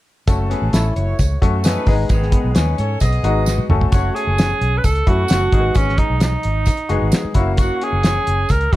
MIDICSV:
0, 0, Header, 1, 8, 480
1, 0, Start_track
1, 0, Tempo, 456969
1, 290, Time_signature, 4, 2, 24, 8
1, 9201, End_track
2, 0, Start_track
2, 0, Title_t, "Tenor saxophone"
2, 0, Program_c, 0, 66
2, 4130, Note_on_c, 0, 66, 87
2, 4358, Note_on_c, 0, 68, 102
2, 4374, Note_off_c, 0, 66, 0
2, 5018, Note_on_c, 0, 71, 69
2, 5034, Note_off_c, 0, 68, 0
2, 5087, Note_on_c, 0, 69, 91
2, 5103, Note_off_c, 0, 71, 0
2, 5333, Note_on_c, 0, 66, 99
2, 5348, Note_off_c, 0, 69, 0
2, 6058, Note_on_c, 0, 61, 86
2, 6073, Note_off_c, 0, 66, 0
2, 6289, Note_on_c, 0, 63, 85
2, 6305, Note_off_c, 0, 61, 0
2, 6529, Note_off_c, 0, 63, 0
2, 6545, Note_on_c, 0, 63, 76
2, 7696, Note_off_c, 0, 63, 0
2, 7994, Note_on_c, 0, 66, 82
2, 8234, Note_on_c, 0, 68, 99
2, 8250, Note_off_c, 0, 66, 0
2, 8939, Note_on_c, 0, 70, 96
2, 8955, Note_off_c, 0, 68, 0
2, 9188, Note_off_c, 0, 70, 0
2, 9201, End_track
3, 0, Start_track
3, 0, Title_t, "Horn section"
3, 0, Program_c, 1, 61
3, 528, Note_on_c, 1, 59, 80
3, 529, Note_on_c, 1, 71, 89
3, 531, Note_on_c, 1, 68, 77
3, 720, Note_off_c, 1, 59, 0
3, 721, Note_off_c, 1, 71, 0
3, 722, Note_off_c, 1, 68, 0
3, 766, Note_on_c, 1, 61, 75
3, 770, Note_on_c, 1, 69, 83
3, 778, Note_on_c, 1, 54, 81
3, 959, Note_off_c, 1, 61, 0
3, 961, Note_off_c, 1, 69, 0
3, 966, Note_off_c, 1, 54, 0
3, 1011, Note_on_c, 1, 66, 76
3, 1014, Note_on_c, 1, 57, 77
3, 1014, Note_on_c, 1, 73, 89
3, 1460, Note_off_c, 1, 66, 0
3, 1462, Note_off_c, 1, 57, 0
3, 1462, Note_off_c, 1, 73, 0
3, 1731, Note_on_c, 1, 56, 92
3, 1737, Note_on_c, 1, 63, 99
3, 1737, Note_on_c, 1, 71, 112
3, 2068, Note_off_c, 1, 56, 0
3, 2071, Note_off_c, 1, 63, 0
3, 2071, Note_off_c, 1, 71, 0
3, 2212, Note_on_c, 1, 59, 108
3, 2217, Note_on_c, 1, 51, 111
3, 2218, Note_on_c, 1, 68, 112
3, 2660, Note_off_c, 1, 59, 0
3, 2663, Note_off_c, 1, 51, 0
3, 2664, Note_off_c, 1, 68, 0
3, 2690, Note_on_c, 1, 56, 81
3, 2692, Note_on_c, 1, 63, 80
3, 2695, Note_on_c, 1, 71, 85
3, 2881, Note_off_c, 1, 56, 0
3, 2882, Note_off_c, 1, 63, 0
3, 2884, Note_off_c, 1, 71, 0
3, 2921, Note_on_c, 1, 69, 91
3, 2923, Note_on_c, 1, 61, 81
3, 2924, Note_on_c, 1, 73, 95
3, 3115, Note_off_c, 1, 69, 0
3, 3116, Note_off_c, 1, 61, 0
3, 3117, Note_off_c, 1, 73, 0
3, 3162, Note_on_c, 1, 59, 94
3, 3164, Note_on_c, 1, 68, 96
3, 3167, Note_on_c, 1, 75, 102
3, 3842, Note_off_c, 1, 59, 0
3, 3843, Note_off_c, 1, 68, 0
3, 3844, Note_off_c, 1, 75, 0
3, 9201, End_track
4, 0, Start_track
4, 0, Title_t, "Clean electric guitar"
4, 0, Program_c, 2, 27
4, 528, Note_on_c, 2, 61, 73
4, 702, Note_off_c, 2, 61, 0
4, 773, Note_on_c, 2, 64, 77
4, 1222, Note_off_c, 2, 64, 0
4, 1488, Note_on_c, 2, 66, 72
4, 1662, Note_off_c, 2, 66, 0
4, 1720, Note_on_c, 2, 61, 74
4, 1897, Note_off_c, 2, 61, 0
4, 1958, Note_on_c, 2, 63, 75
4, 2135, Note_off_c, 2, 63, 0
4, 2433, Note_on_c, 2, 59, 78
4, 2612, Note_off_c, 2, 59, 0
4, 2680, Note_on_c, 2, 61, 73
4, 3134, Note_off_c, 2, 61, 0
4, 3406, Note_on_c, 2, 63, 63
4, 3580, Note_off_c, 2, 63, 0
4, 3885, Note_on_c, 2, 61, 63
4, 4059, Note_off_c, 2, 61, 0
4, 4116, Note_on_c, 2, 66, 83
4, 4294, Note_off_c, 2, 66, 0
4, 4365, Note_on_c, 2, 61, 63
4, 4540, Note_off_c, 2, 61, 0
4, 4610, Note_on_c, 2, 61, 73
4, 5060, Note_off_c, 2, 61, 0
4, 5322, Note_on_c, 2, 64, 69
4, 5497, Note_off_c, 2, 64, 0
4, 5562, Note_on_c, 2, 66, 69
4, 6016, Note_off_c, 2, 66, 0
4, 6040, Note_on_c, 2, 68, 73
4, 6217, Note_off_c, 2, 68, 0
4, 6286, Note_on_c, 2, 63, 68
4, 6461, Note_off_c, 2, 63, 0
4, 6523, Note_on_c, 2, 63, 78
4, 6977, Note_off_c, 2, 63, 0
4, 7238, Note_on_c, 2, 66, 62
4, 7416, Note_off_c, 2, 66, 0
4, 7717, Note_on_c, 2, 64, 86
4, 7896, Note_off_c, 2, 64, 0
4, 7963, Note_on_c, 2, 66, 84
4, 8139, Note_off_c, 2, 66, 0
4, 8210, Note_on_c, 2, 61, 65
4, 8384, Note_off_c, 2, 61, 0
4, 8451, Note_on_c, 2, 61, 80
4, 8902, Note_off_c, 2, 61, 0
4, 9201, End_track
5, 0, Start_track
5, 0, Title_t, "Upright piano"
5, 0, Program_c, 3, 0
5, 290, Note_on_c, 3, 66, 75
5, 290, Note_on_c, 3, 69, 91
5, 291, Note_on_c, 3, 61, 74
5, 293, Note_on_c, 3, 57, 82
5, 863, Note_off_c, 3, 69, 0
5, 864, Note_off_c, 3, 61, 0
5, 864, Note_off_c, 3, 66, 0
5, 865, Note_off_c, 3, 57, 0
5, 1488, Note_on_c, 3, 57, 83
5, 1488, Note_on_c, 3, 61, 74
5, 1489, Note_on_c, 3, 66, 74
5, 1489, Note_on_c, 3, 69, 89
5, 1918, Note_off_c, 3, 57, 0
5, 1919, Note_off_c, 3, 61, 0
5, 1919, Note_off_c, 3, 66, 0
5, 1919, Note_off_c, 3, 69, 0
5, 1973, Note_on_c, 3, 63, 81
5, 1974, Note_on_c, 3, 56, 85
5, 1974, Note_on_c, 3, 59, 80
5, 1977, Note_on_c, 3, 68, 86
5, 2738, Note_off_c, 3, 56, 0
5, 2738, Note_off_c, 3, 59, 0
5, 2738, Note_off_c, 3, 63, 0
5, 2739, Note_off_c, 3, 68, 0
5, 3400, Note_on_c, 3, 56, 77
5, 3400, Note_on_c, 3, 59, 74
5, 3403, Note_on_c, 3, 63, 71
5, 3405, Note_on_c, 3, 66, 86
5, 3834, Note_off_c, 3, 56, 0
5, 3834, Note_off_c, 3, 59, 0
5, 3835, Note_off_c, 3, 63, 0
5, 3836, Note_off_c, 3, 66, 0
5, 3888, Note_on_c, 3, 61, 68
5, 3890, Note_on_c, 3, 66, 69
5, 3890, Note_on_c, 3, 69, 84
5, 3894, Note_on_c, 3, 57, 85
5, 4079, Note_off_c, 3, 61, 0
5, 4080, Note_off_c, 3, 66, 0
5, 4080, Note_off_c, 3, 69, 0
5, 4082, Note_off_c, 3, 57, 0
5, 4136, Note_on_c, 3, 57, 72
5, 4137, Note_on_c, 3, 66, 62
5, 4138, Note_on_c, 3, 61, 67
5, 4138, Note_on_c, 3, 73, 80
5, 4706, Note_off_c, 3, 57, 0
5, 4707, Note_off_c, 3, 61, 0
5, 4707, Note_off_c, 3, 66, 0
5, 4707, Note_off_c, 3, 73, 0
5, 5331, Note_on_c, 3, 66, 64
5, 5331, Note_on_c, 3, 69, 74
5, 5336, Note_on_c, 3, 57, 65
5, 5336, Note_on_c, 3, 61, 59
5, 5760, Note_off_c, 3, 66, 0
5, 5760, Note_off_c, 3, 69, 0
5, 5762, Note_off_c, 3, 61, 0
5, 5763, Note_off_c, 3, 57, 0
5, 5807, Note_on_c, 3, 68, 79
5, 5809, Note_on_c, 3, 58, 53
5, 5809, Note_on_c, 3, 63, 66
5, 5810, Note_on_c, 3, 56, 72
5, 5866, Note_off_c, 3, 58, 0
5, 5866, Note_on_c, 3, 59, 66
5, 6576, Note_off_c, 3, 68, 0
5, 6577, Note_off_c, 3, 56, 0
5, 6577, Note_off_c, 3, 63, 0
5, 6605, Note_off_c, 3, 59, 0
5, 7246, Note_on_c, 3, 56, 81
5, 7246, Note_on_c, 3, 63, 74
5, 7247, Note_on_c, 3, 59, 75
5, 7248, Note_on_c, 3, 68, 89
5, 7679, Note_off_c, 3, 56, 0
5, 7679, Note_off_c, 3, 59, 0
5, 7679, Note_off_c, 3, 63, 0
5, 7680, Note_off_c, 3, 68, 0
5, 7727, Note_on_c, 3, 64, 74
5, 7728, Note_on_c, 3, 58, 87
5, 7728, Note_on_c, 3, 66, 92
5, 7729, Note_on_c, 3, 61, 76
5, 8497, Note_off_c, 3, 64, 0
5, 8497, Note_off_c, 3, 66, 0
5, 8498, Note_off_c, 3, 58, 0
5, 8498, Note_off_c, 3, 61, 0
5, 9169, Note_on_c, 3, 58, 69
5, 9169, Note_on_c, 3, 61, 66
5, 9170, Note_on_c, 3, 64, 69
5, 9170, Note_on_c, 3, 66, 78
5, 9201, Note_off_c, 3, 58, 0
5, 9201, Note_off_c, 3, 61, 0
5, 9201, Note_off_c, 3, 64, 0
5, 9201, Note_off_c, 3, 66, 0
5, 9201, End_track
6, 0, Start_track
6, 0, Title_t, "Fingered electric bass"
6, 0, Program_c, 4, 33
6, 293, Note_on_c, 4, 30, 103
6, 556, Note_off_c, 4, 30, 0
6, 649, Note_on_c, 4, 33, 74
6, 737, Note_off_c, 4, 33, 0
6, 768, Note_on_c, 4, 33, 92
6, 945, Note_off_c, 4, 33, 0
6, 1009, Note_on_c, 4, 30, 84
6, 1185, Note_off_c, 4, 30, 0
6, 1253, Note_on_c, 4, 37, 86
6, 1428, Note_off_c, 4, 37, 0
6, 1496, Note_on_c, 4, 42, 87
6, 1846, Note_off_c, 4, 42, 0
6, 1966, Note_on_c, 4, 32, 97
6, 2143, Note_off_c, 4, 32, 0
6, 2203, Note_on_c, 4, 32, 106
6, 2469, Note_off_c, 4, 32, 0
6, 2566, Note_on_c, 4, 35, 76
6, 2654, Note_off_c, 4, 35, 0
6, 2688, Note_on_c, 4, 39, 86
6, 2864, Note_off_c, 4, 39, 0
6, 2928, Note_on_c, 4, 44, 93
6, 3104, Note_off_c, 4, 44, 0
6, 3163, Note_on_c, 4, 35, 77
6, 3341, Note_off_c, 4, 35, 0
6, 3395, Note_on_c, 4, 32, 82
6, 3752, Note_off_c, 4, 32, 0
6, 3875, Note_on_c, 4, 30, 88
6, 4056, Note_off_c, 4, 30, 0
6, 4124, Note_on_c, 4, 30, 89
6, 4301, Note_off_c, 4, 30, 0
6, 4487, Note_on_c, 4, 30, 87
6, 4752, Note_off_c, 4, 30, 0
6, 4846, Note_on_c, 4, 35, 83
6, 5023, Note_off_c, 4, 35, 0
6, 5090, Note_on_c, 4, 37, 84
6, 5265, Note_off_c, 4, 37, 0
6, 5330, Note_on_c, 4, 42, 78
6, 5506, Note_off_c, 4, 42, 0
6, 5575, Note_on_c, 4, 30, 81
6, 5749, Note_off_c, 4, 30, 0
6, 5807, Note_on_c, 4, 32, 79
6, 5984, Note_off_c, 4, 32, 0
6, 6048, Note_on_c, 4, 32, 98
6, 6313, Note_off_c, 4, 32, 0
6, 6406, Note_on_c, 4, 35, 80
6, 6672, Note_off_c, 4, 35, 0
6, 6775, Note_on_c, 4, 32, 82
6, 7038, Note_off_c, 4, 32, 0
6, 7244, Note_on_c, 4, 30, 76
6, 7334, Note_off_c, 4, 30, 0
6, 7373, Note_on_c, 4, 32, 76
6, 7460, Note_off_c, 4, 32, 0
6, 7722, Note_on_c, 4, 30, 86
6, 8078, Note_off_c, 4, 30, 0
6, 8324, Note_on_c, 4, 30, 78
6, 8592, Note_off_c, 4, 30, 0
6, 8691, Note_on_c, 4, 30, 73
6, 8867, Note_off_c, 4, 30, 0
6, 8929, Note_on_c, 4, 37, 86
6, 9107, Note_off_c, 4, 37, 0
6, 9169, Note_on_c, 4, 42, 91
6, 9201, Note_off_c, 4, 42, 0
6, 9201, End_track
7, 0, Start_track
7, 0, Title_t, "Muted fingered electric bass strokes"
7, 7611, Note_on_c, 9, 29, 44
7, 7716, Note_off_c, 9, 29, 0
7, 9201, End_track
8, 0, Start_track
8, 0, Title_t, "Drums"
8, 289, Note_on_c, 9, 42, 93
8, 291, Note_on_c, 9, 36, 110
8, 296, Note_on_c, 9, 54, 66
8, 394, Note_off_c, 9, 42, 0
8, 396, Note_off_c, 9, 36, 0
8, 401, Note_off_c, 9, 54, 0
8, 536, Note_on_c, 9, 42, 72
8, 641, Note_off_c, 9, 42, 0
8, 767, Note_on_c, 9, 42, 82
8, 777, Note_on_c, 9, 38, 103
8, 777, Note_on_c, 9, 54, 86
8, 872, Note_off_c, 9, 42, 0
8, 882, Note_off_c, 9, 38, 0
8, 882, Note_off_c, 9, 54, 0
8, 1011, Note_on_c, 9, 42, 53
8, 1116, Note_off_c, 9, 42, 0
8, 1247, Note_on_c, 9, 54, 66
8, 1253, Note_on_c, 9, 36, 82
8, 1261, Note_on_c, 9, 42, 84
8, 1352, Note_off_c, 9, 54, 0
8, 1358, Note_off_c, 9, 36, 0
8, 1366, Note_off_c, 9, 42, 0
8, 1492, Note_on_c, 9, 36, 82
8, 1501, Note_on_c, 9, 42, 79
8, 1597, Note_off_c, 9, 36, 0
8, 1606, Note_off_c, 9, 42, 0
8, 1721, Note_on_c, 9, 54, 105
8, 1733, Note_on_c, 9, 42, 99
8, 1743, Note_on_c, 9, 38, 110
8, 1826, Note_off_c, 9, 54, 0
8, 1839, Note_off_c, 9, 42, 0
8, 1848, Note_off_c, 9, 38, 0
8, 1958, Note_on_c, 9, 46, 52
8, 1963, Note_on_c, 9, 36, 85
8, 1972, Note_on_c, 9, 38, 35
8, 2063, Note_off_c, 9, 46, 0
8, 2068, Note_off_c, 9, 36, 0
8, 2077, Note_off_c, 9, 38, 0
8, 2198, Note_on_c, 9, 42, 93
8, 2202, Note_on_c, 9, 54, 65
8, 2205, Note_on_c, 9, 36, 109
8, 2303, Note_off_c, 9, 42, 0
8, 2307, Note_off_c, 9, 54, 0
8, 2310, Note_off_c, 9, 36, 0
8, 2337, Note_on_c, 9, 38, 32
8, 2437, Note_on_c, 9, 42, 69
8, 2439, Note_on_c, 9, 36, 89
8, 2442, Note_off_c, 9, 38, 0
8, 2542, Note_off_c, 9, 42, 0
8, 2544, Note_off_c, 9, 36, 0
8, 2675, Note_on_c, 9, 42, 79
8, 2684, Note_on_c, 9, 54, 87
8, 2685, Note_on_c, 9, 38, 116
8, 2780, Note_off_c, 9, 42, 0
8, 2789, Note_off_c, 9, 54, 0
8, 2790, Note_off_c, 9, 38, 0
8, 2923, Note_on_c, 9, 42, 55
8, 3029, Note_off_c, 9, 42, 0
8, 3153, Note_on_c, 9, 54, 68
8, 3165, Note_on_c, 9, 36, 74
8, 3167, Note_on_c, 9, 42, 89
8, 3258, Note_off_c, 9, 54, 0
8, 3270, Note_off_c, 9, 36, 0
8, 3272, Note_off_c, 9, 42, 0
8, 3283, Note_on_c, 9, 42, 43
8, 3388, Note_off_c, 9, 42, 0
8, 3403, Note_on_c, 9, 42, 74
8, 3508, Note_off_c, 9, 42, 0
8, 3637, Note_on_c, 9, 54, 96
8, 3650, Note_on_c, 9, 38, 54
8, 3742, Note_off_c, 9, 54, 0
8, 3755, Note_off_c, 9, 38, 0
8, 3762, Note_on_c, 9, 48, 53
8, 3867, Note_off_c, 9, 48, 0
8, 3883, Note_on_c, 9, 45, 78
8, 3988, Note_off_c, 9, 45, 0
8, 4006, Note_on_c, 9, 43, 88
8, 4111, Note_off_c, 9, 43, 0
8, 4118, Note_on_c, 9, 42, 92
8, 4121, Note_on_c, 9, 54, 65
8, 4123, Note_on_c, 9, 36, 104
8, 4223, Note_off_c, 9, 42, 0
8, 4226, Note_off_c, 9, 54, 0
8, 4228, Note_off_c, 9, 36, 0
8, 4371, Note_on_c, 9, 42, 67
8, 4476, Note_off_c, 9, 42, 0
8, 4604, Note_on_c, 9, 54, 76
8, 4608, Note_on_c, 9, 42, 77
8, 4618, Note_on_c, 9, 38, 109
8, 4709, Note_off_c, 9, 54, 0
8, 4713, Note_off_c, 9, 42, 0
8, 4723, Note_off_c, 9, 38, 0
8, 4848, Note_on_c, 9, 42, 58
8, 4953, Note_off_c, 9, 42, 0
8, 5082, Note_on_c, 9, 54, 67
8, 5084, Note_on_c, 9, 42, 92
8, 5086, Note_on_c, 9, 36, 73
8, 5187, Note_off_c, 9, 54, 0
8, 5189, Note_off_c, 9, 42, 0
8, 5191, Note_off_c, 9, 36, 0
8, 5200, Note_on_c, 9, 42, 40
8, 5305, Note_off_c, 9, 42, 0
8, 5324, Note_on_c, 9, 42, 73
8, 5326, Note_on_c, 9, 36, 82
8, 5429, Note_off_c, 9, 42, 0
8, 5431, Note_off_c, 9, 36, 0
8, 5549, Note_on_c, 9, 54, 93
8, 5566, Note_on_c, 9, 42, 96
8, 5576, Note_on_c, 9, 38, 98
8, 5654, Note_off_c, 9, 54, 0
8, 5671, Note_off_c, 9, 42, 0
8, 5681, Note_off_c, 9, 38, 0
8, 5801, Note_on_c, 9, 42, 68
8, 5804, Note_on_c, 9, 36, 86
8, 5906, Note_off_c, 9, 42, 0
8, 5909, Note_off_c, 9, 36, 0
8, 6035, Note_on_c, 9, 54, 63
8, 6043, Note_on_c, 9, 42, 95
8, 6047, Note_on_c, 9, 36, 104
8, 6140, Note_off_c, 9, 54, 0
8, 6148, Note_off_c, 9, 42, 0
8, 6152, Note_off_c, 9, 36, 0
8, 6185, Note_on_c, 9, 38, 34
8, 6279, Note_on_c, 9, 42, 69
8, 6283, Note_on_c, 9, 36, 92
8, 6290, Note_off_c, 9, 38, 0
8, 6385, Note_off_c, 9, 42, 0
8, 6388, Note_off_c, 9, 36, 0
8, 6517, Note_on_c, 9, 42, 83
8, 6524, Note_on_c, 9, 54, 87
8, 6527, Note_on_c, 9, 38, 104
8, 6622, Note_off_c, 9, 42, 0
8, 6629, Note_off_c, 9, 54, 0
8, 6632, Note_off_c, 9, 38, 0
8, 6757, Note_on_c, 9, 42, 60
8, 6862, Note_off_c, 9, 42, 0
8, 6991, Note_on_c, 9, 54, 67
8, 7005, Note_on_c, 9, 36, 73
8, 7006, Note_on_c, 9, 42, 90
8, 7096, Note_off_c, 9, 54, 0
8, 7110, Note_off_c, 9, 36, 0
8, 7111, Note_off_c, 9, 42, 0
8, 7112, Note_on_c, 9, 42, 41
8, 7217, Note_off_c, 9, 42, 0
8, 7240, Note_on_c, 9, 42, 76
8, 7345, Note_off_c, 9, 42, 0
8, 7476, Note_on_c, 9, 54, 106
8, 7478, Note_on_c, 9, 42, 98
8, 7488, Note_on_c, 9, 38, 109
8, 7581, Note_off_c, 9, 54, 0
8, 7583, Note_off_c, 9, 42, 0
8, 7593, Note_off_c, 9, 38, 0
8, 7715, Note_on_c, 9, 42, 67
8, 7721, Note_on_c, 9, 36, 80
8, 7729, Note_on_c, 9, 38, 35
8, 7820, Note_off_c, 9, 42, 0
8, 7826, Note_off_c, 9, 36, 0
8, 7834, Note_off_c, 9, 38, 0
8, 7956, Note_on_c, 9, 42, 88
8, 7964, Note_on_c, 9, 36, 107
8, 7964, Note_on_c, 9, 54, 63
8, 8061, Note_off_c, 9, 42, 0
8, 8069, Note_off_c, 9, 36, 0
8, 8069, Note_off_c, 9, 54, 0
8, 8209, Note_on_c, 9, 42, 73
8, 8314, Note_off_c, 9, 42, 0
8, 8439, Note_on_c, 9, 42, 80
8, 8449, Note_on_c, 9, 38, 109
8, 8453, Note_on_c, 9, 54, 86
8, 8544, Note_off_c, 9, 42, 0
8, 8554, Note_off_c, 9, 38, 0
8, 8558, Note_off_c, 9, 54, 0
8, 8686, Note_on_c, 9, 42, 61
8, 8791, Note_off_c, 9, 42, 0
8, 8915, Note_on_c, 9, 54, 64
8, 8928, Note_on_c, 9, 36, 75
8, 8932, Note_on_c, 9, 42, 90
8, 9020, Note_off_c, 9, 54, 0
8, 9033, Note_off_c, 9, 36, 0
8, 9037, Note_off_c, 9, 42, 0
8, 9042, Note_on_c, 9, 42, 41
8, 9147, Note_off_c, 9, 42, 0
8, 9167, Note_on_c, 9, 36, 82
8, 9168, Note_on_c, 9, 42, 72
8, 9201, Note_off_c, 9, 36, 0
8, 9201, Note_off_c, 9, 42, 0
8, 9201, End_track
0, 0, End_of_file